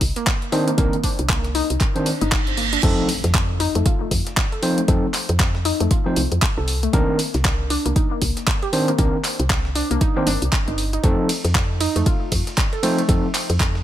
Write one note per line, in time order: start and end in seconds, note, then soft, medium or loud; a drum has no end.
0.01 0.11 C2 loud
0.01 kick medium
0.01 closed hi-hat medium
0.01 open hi-hat loud
0.16 0.22 A#3 loud
0.16 snare soft
0.16 closed hi-hat medium
0.27 kick loud
0.27 snare loud
0.27 clap loud
0.27 closed hi-hat medium
0.42 closed hi-hat soft
0.52 0.70 D#3 medium
0.52 0.70 C4 medium
0.52 0.70 D4 medium
0.52 0.58 D#4 medium
0.52 0.70 C5 loud
0.52 closed hi-hat medium
0.52 open hi-hat medium
0.68 0.70 A#3 medium
0.68 closed hi-hat medium
0.78 0.88 C2 loud
0.78 0.95 D#3 medium
0.78 0.84 A#3 loud
0.78 0.95 C4 medium
0.78 0.95 D4 medium
0.78 0.95 A#4 loud
0.78 kick loud
0.78 closed hi-hat medium
0.93 closed hi-hat soft
1.04 1.07 D4 medium
1.04 kick medium
1.04 closed hi-hat medium
1.04 open hi-hat loud
1.19 1.62 C2 loud
1.19 closed hi-hat medium
1.29 1.38 A#3 medium
1.29 kick loud
1.29 snare loud
1.29 clap loud
1.29 closed hi-hat medium
1.44 snare medium
1.44 closed hi-hat soft
1.55 1.61 D#4 loud
1.55 closed hi-hat medium
1.55 open hi-hat medium
1.70 1.77 C2 medium
1.70 closed hi-hat medium
1.80 kick loud
1.80 clap medium
1.80 closed hi-hat medium
1.80 reverse cymbal medium
1.95 2.09 D#3 medium
1.95 2.09 C4 medium
1.95 2.09 D4 medium
1.95 2.09 C5 medium
1.95 closed hi-hat soft
2.06 2.12 D4 medium
2.06 closed hi-hat medium
2.06 open hi-hat loud
2.21 2.77 G1 loud
2.21 2.25 D#4 loud
2.21 closed hi-hat medium
2.32 kick loud
2.32 snare loud
2.32 clap loud
2.32 closed hi-hat medium
2.47 closed hi-hat soft
2.57 2.63 A#3 medium
2.57 closed hi-hat medium
2.57 open hi-hat medium
2.73 2.77 D4 medium
2.73 closed hi-hat medium
2.83 2.93 F2 loud
2.83 3.08 F3 medium
2.83 2.89 A3 medium
2.83 3.08 C4 medium
2.83 3.08 D#4 medium
2.83 3.08 A4 loud
2.83 kick loud
2.83 closed hi-hat medium
2.83 crash loud
2.83 impact medium
3.09 snare medium
3.09 closed hi-hat medium
3.09 open hi-hat loud
3.24 3.67 F2 loud
3.24 snare soft
3.24 closed hi-hat medium
3.34 kick loud
3.34 snare loud
3.34 clap loud
3.34 closed hi-hat medium
3.60 3.66 D#4 loud
3.60 closed hi-hat medium
3.60 open hi-hat medium
3.75 3.82 F2 medium
3.75 3.79 A3 medium
3.75 closed hi-hat medium
3.86 3.91 F4 medium
3.86 kick loud
3.86 closed hi-hat medium
4.01 4.03 A3 medium
4.11 4.21 F2 loud
4.11 kick medium
4.11 closed hi-hat medium
4.11 open hi-hat loud
4.27 snare soft
4.27 closed hi-hat medium
4.37 kick loud
4.37 snare loud
4.37 clap loud
4.37 closed hi-hat medium
4.52 4.58 A4 medium
4.52 closed hi-hat soft
4.62 4.80 F3 medium
4.62 4.80 C4 medium
4.62 4.80 D#4 medium
4.62 4.80 C5 loud
4.62 closed hi-hat medium
4.62 open hi-hat loud
4.78 4.82 A3 medium
4.78 closed hi-hat medium
4.88 4.98 F2 loud
4.88 5.05 F3 medium
4.88 4.94 A3 medium
4.88 5.06 C4 medium
4.88 5.06 D#4 medium
4.88 5.06 A4 medium
4.88 kick loud
4.88 closed hi-hat medium
5.14 clap medium
5.14 closed hi-hat medium
5.14 open hi-hat loud
5.29 5.72 F2 loud
5.29 closed hi-hat medium
5.39 kick loud
5.39 snare loud
5.39 clap loud
5.39 closed hi-hat medium
5.55 snare medium
5.65 5.71 D#4 loud
5.65 closed hi-hat medium
5.65 open hi-hat loud
5.80 5.87 F2 medium
5.80 5.84 A3 medium
5.80 closed hi-hat medium
5.91 5.96 F4 medium
5.91 kick loud
5.91 closed hi-hat medium
6.06 6.19 F3 medium
6.06 6.08 A3 medium
6.06 6.20 C4 medium
6.06 6.20 D#4 medium
6.06 6.20 C5 medium
6.16 6.26 C2 loud
6.16 closed hi-hat medium
6.16 open hi-hat loud
6.32 6.38 F2 medium
6.32 closed hi-hat medium
6.42 kick loud
6.42 snare loud
6.42 clap loud
6.42 closed hi-hat medium
6.57 6.88 C2 loud
6.57 6.63 A4 medium
6.68 closed hi-hat medium
6.68 open hi-hat loud
6.83 6.87 A3 medium
6.83 closed hi-hat medium
6.93 7.03 C2 loud
6.93 7.18 D#3 loud
6.93 6.99 A#3 medium
6.93 7.18 C4 medium
6.93 7.18 D4 medium
6.93 7.18 A#4 loud
6.93 kick loud
6.93 closed hi-hat medium
7.19 snare medium
7.19 closed hi-hat medium
7.19 open hi-hat loud
7.34 7.77 C2 loud
7.34 snare soft
7.34 closed hi-hat medium
7.45 kick loud
7.45 snare loud
7.45 clap loud
7.45 closed hi-hat medium
7.70 7.76 D4 loud
7.70 closed hi-hat medium
7.70 open hi-hat loud
7.86 7.92 C2 medium
7.86 7.89 A#3 medium
7.86 closed hi-hat medium
7.96 8.02 D#4 medium
7.96 kick loud
7.96 closed hi-hat medium
8.11 8.14 A#3 medium
8.22 8.31 C2 loud
8.22 kick medium
8.22 closed hi-hat medium
8.22 open hi-hat loud
8.37 snare soft
8.37 closed hi-hat soft
8.47 kick loud
8.47 snare loud
8.47 clap loud
8.47 closed hi-hat medium
8.62 8.68 G4 medium
8.62 closed hi-hat soft
8.72 8.90 D#3 medium
8.72 8.90 C4 medium
8.72 8.90 D4 medium
8.72 8.90 C5 loud
8.72 closed hi-hat medium
8.72 open hi-hat loud
8.88 8.92 A#3 medium
8.88 closed hi-hat soft
8.98 9.08 C2 loud
8.98 9.16 D#3 medium
8.98 9.04 A#3 medium
8.98 9.16 C4 medium
8.98 9.16 D4 medium
8.98 9.16 A#4 medium
8.98 kick loud
8.98 closed hi-hat medium
9.24 clap medium
9.24 closed hi-hat medium
9.24 open hi-hat loud
9.39 9.82 C2 loud
9.39 closed hi-hat medium
9.50 kick loud
9.50 snare loud
9.50 clap loud
9.50 closed hi-hat medium
9.65 snare medium
9.75 9.81 D4 loud
9.75 closed hi-hat medium
9.75 open hi-hat loud
9.91 9.97 C2 medium
9.91 9.95 A#3 medium
9.91 closed hi-hat medium
10.01 10.07 D#4 medium
10.01 kick loud
10.01 closed hi-hat medium
10.16 10.30 D#3 medium
10.16 10.19 A#3 medium
10.16 10.30 C4 medium
10.16 10.30 D4 medium
10.16 10.30 C5 medium
10.27 10.37 G1 loud
10.27 10.30 D4 loud
10.27 closed hi-hat medium
10.27 open hi-hat loud
10.42 10.49 C2 medium
10.42 closed hi-hat soft
10.52 kick loud
10.52 snare loud
10.52 clap loud
10.52 closed hi-hat medium
10.68 10.98 G1 loud
10.68 10.70 D#4 medium
10.68 closed hi-hat soft
10.78 closed hi-hat medium
10.78 open hi-hat medium
10.93 10.97 D#4 medium
10.93 closed hi-hat soft
11.03 11.14 F2 loud
11.03 11.28 F3 loud
11.03 11.09 A3 medium
11.03 11.28 C4 medium
11.03 11.29 D#4 medium
11.03 11.29 A4 loud
11.03 kick loud
11.03 closed hi-hat medium
11.29 snare medium
11.29 closed hi-hat medium
11.29 open hi-hat loud
11.29 ride medium
11.44 11.87 F2 loud
11.44 snare soft
11.44 closed hi-hat medium
11.55 kick loud
11.55 snare loud
11.55 clap loud
11.55 closed hi-hat medium
11.80 11.86 D#4 loud
11.80 closed hi-hat medium
11.80 open hi-hat loud
11.80 ride medium
11.96 12.03 F2 medium
11.96 12.00 A3 medium
11.96 closed hi-hat medium
12.06 12.12 F4 medium
12.06 kick loud
12.06 closed hi-hat medium
12.32 12.42 F2 loud
12.32 kick medium
12.32 closed hi-hat medium
12.32 open hi-hat loud
12.32 ride medium
12.47 snare soft
12.47 closed hi-hat soft
12.57 kick loud
12.57 snare loud
12.57 clap loud
12.57 closed hi-hat medium
12.73 12.78 A4 medium
12.73 closed hi-hat soft
12.83 13.00 F3 medium
12.83 12.87 A3 medium
12.83 13.00 C4 medium
12.83 13.00 D#4 medium
12.83 13.01 C5 loud
12.83 closed hi-hat medium
12.83 open hi-hat medium
12.83 ride medium
12.98 13.02 A3 medium
12.98 closed hi-hat soft
13.08 13.19 F2 loud
13.08 13.26 F3 medium
13.08 13.14 A3 medium
13.08 13.26 C4 medium
13.08 13.26 D#4 medium
13.08 13.26 A4 loud
13.08 kick loud
13.08 closed hi-hat medium
13.34 clap medium
13.34 closed hi-hat medium
13.34 open hi-hat loud
13.34 ride medium
13.50 13.84 F2 loud
13.50 closed hi-hat medium
13.60 kick loud
13.60 snare loud
13.60 clap loud
13.60 closed hi-hat medium
13.75 snare medium